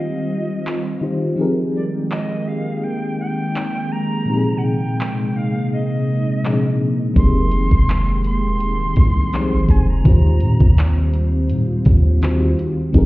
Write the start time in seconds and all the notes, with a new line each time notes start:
Already playing: D#3 G3 C4 D#4 F4 G4 C5 D#5
0.67 clap
1.01 D#3 D#4 F4 G4 C5
1.36 D#3 F3 G#3 A#3 C4 D#4 G4 G5
1.40 G#4 A#4
1.75 D5
2.11 D#5, clap
2.47 F5
2.83 G5
3.19 G5
3.56 clap
3.91 A#5
4.25 A#2 C3 F3 C4 D#4
4.29 D#4 G4
4.37 G#4
4.57 F#5
4.64 G5
5.01 clap
5.36 F5
5.72 D#5
6.43 A#2 F3 C4 D4 G#4, clap
6.52 D#4
7.14 F1 D#3 F3 C4 D#4 G4 G5 C6, kick, closed hi-hat
7.19 G#4 A#4
7.51 closed hi-hat
7.71 F1, kick
7.89 clap, closed hi-hat
8.24 C6, closed hi-hat
8.45 D#1
8.60 closed hi-hat
8.96 C2, kick, closed hi-hat
9.33 F3 C4 D#4 G4 G#4 C5, clap, closed hi-hat
9.53 G1
9.69 F1 G#5, kick, closed hi-hat
9.90 A#5
10.04 D#2 D#3 G3 C4 D#4 F4, kick, closed hi-hat
10.08 G4 C5
10.40 A#2, closed hi-hat
10.60 D#2, kick
10.78 clap, closed hi-hat
11.14 closed hi-hat
11.49 A#2, closed hi-hat
11.85 D#2, kick, closed hi-hat
12.22 D#3 D#4 F4 F#4 C5, clap, closed hi-hat
12.30 G4
12.59 closed hi-hat
12.93 F1 F3 G#3 A#3 C4 D#4 G4 G5, kick, closed hi-hat
12.97 G#4 A#4